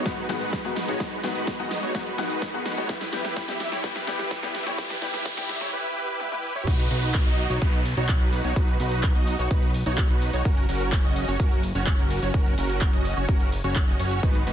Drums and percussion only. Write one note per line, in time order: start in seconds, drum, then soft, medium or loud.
0.06 kick loud
0.06 snare medium
0.06 closed hi-hat soft
0.17 closed hi-hat soft
0.29 snare medium
0.29 open hi-hat loud
0.41 closed hi-hat soft
0.53 kick loud
0.53 snare medium
0.53 closed hi-hat medium
0.65 closed hi-hat soft
0.76 snare medium
0.76 open hi-hat medium
0.88 closed hi-hat soft
1.00 kick loud
1.00 snare medium
1.00 closed hi-hat medium
1.12 closed hi-hat soft
1.24 snare medium
1.24 open hi-hat loud
1.35 closed hi-hat medium
1.47 kick loud
1.47 snare medium
1.47 closed hi-hat medium
1.59 closed hi-hat soft
1.71 snare medium
1.71 open hi-hat medium
1.83 closed hi-hat medium
1.95 kick loud
1.95 snare medium
1.95 closed hi-hat medium
2.07 closed hi-hat soft
2.18 snare medium
2.18 open hi-hat loud
2.30 closed hi-hat medium
2.42 kick loud
2.42 snare medium
2.42 closed hi-hat medium
2.54 closed hi-hat soft
2.66 snare medium
2.66 open hi-hat medium
2.77 closed hi-hat medium
2.89 kick loud
2.89 snare medium
2.89 closed hi-hat medium
3.01 snare medium
3.01 closed hi-hat soft
3.13 snare medium
3.13 open hi-hat loud
3.25 snare medium
3.25 closed hi-hat medium
3.37 kick loud
3.37 snare loud
3.37 closed hi-hat medium
3.48 snare medium
3.48 closed hi-hat soft
3.60 snare medium
3.60 open hi-hat medium
3.72 snare medium
3.72 closed hi-hat medium
3.84 kick loud
3.84 snare loud
3.84 closed hi-hat medium
3.96 snare medium
3.96 closed hi-hat soft
4.07 snare loud
4.07 open hi-hat loud
4.19 snare medium
4.19 closed hi-hat medium
4.31 kick loud
4.31 snare loud
4.31 closed hi-hat medium
4.43 snare medium
4.43 closed hi-hat soft
4.55 snare loud
4.55 open hi-hat medium
4.67 snare medium
4.67 closed hi-hat medium
4.78 kick loud
4.78 snare loud
4.78 closed hi-hat medium
4.90 snare medium
4.90 closed hi-hat soft
5.02 snare loud
5.02 open hi-hat loud
5.14 snare medium
5.14 closed hi-hat medium
5.26 kick loud
5.26 snare loud
5.26 closed hi-hat medium
5.37 snare medium
5.37 closed hi-hat soft
5.49 snare loud
5.49 open hi-hat medium
5.61 snare loud
5.61 closed hi-hat medium
6.20 high tom medium
6.32 high tom medium
6.56 mid tom medium
6.67 kick loud
6.67 closed hi-hat loud
6.67 crash loud
6.79 closed hi-hat soft
6.91 open hi-hat loud
7.03 closed hi-hat soft
7.14 kick loud
7.14 clap loud
7.14 closed hi-hat loud
7.26 closed hi-hat soft
7.38 open hi-hat medium
7.50 closed hi-hat soft
7.62 kick loud
7.62 closed hi-hat loud
7.74 closed hi-hat soft
7.85 open hi-hat loud
7.97 closed hi-hat soft
8.09 kick loud
8.09 clap loud
8.09 closed hi-hat medium
8.21 closed hi-hat soft
8.33 open hi-hat medium
8.44 closed hi-hat soft
8.56 kick loud
8.56 closed hi-hat medium
8.68 closed hi-hat soft
8.80 open hi-hat loud
8.92 closed hi-hat soft
9.03 kick loud
9.03 clap loud
9.03 closed hi-hat medium
9.15 closed hi-hat soft
9.27 open hi-hat loud
9.39 closed hi-hat soft
9.51 kick loud
9.51 closed hi-hat loud
9.63 closed hi-hat soft
9.74 open hi-hat loud
9.86 closed hi-hat soft
9.98 kick loud
9.98 clap loud
9.98 closed hi-hat medium
10.10 closed hi-hat soft
10.22 open hi-hat loud
10.33 closed hi-hat soft
10.45 kick loud
10.45 closed hi-hat medium
10.57 closed hi-hat soft
10.69 open hi-hat loud
10.81 closed hi-hat soft
10.92 kick loud
10.92 clap loud
10.92 closed hi-hat medium
11.04 closed hi-hat soft
11.16 open hi-hat loud
11.28 closed hi-hat soft
11.40 kick loud
11.40 closed hi-hat loud
11.52 closed hi-hat soft
11.63 open hi-hat loud
11.75 closed hi-hat soft
11.87 kick loud
11.87 clap loud
11.87 closed hi-hat medium
11.99 closed hi-hat soft
12.10 open hi-hat loud
12.22 closed hi-hat soft
12.34 kick loud
12.34 closed hi-hat medium
12.46 closed hi-hat soft
12.58 open hi-hat loud
12.70 closed hi-hat soft
12.81 kick loud
12.81 clap loud
12.81 closed hi-hat medium
12.93 closed hi-hat soft
13.05 open hi-hat loud
13.17 closed hi-hat soft
13.29 kick loud
13.29 closed hi-hat medium
13.41 closed hi-hat soft
13.52 open hi-hat loud
13.64 closed hi-hat soft
13.76 kick loud
13.76 clap loud
13.76 closed hi-hat medium
13.88 closed hi-hat soft
13.99 open hi-hat loud
14.11 closed hi-hat soft
14.23 kick loud
14.23 closed hi-hat medium
14.35 closed hi-hat soft
14.47 open hi-hat loud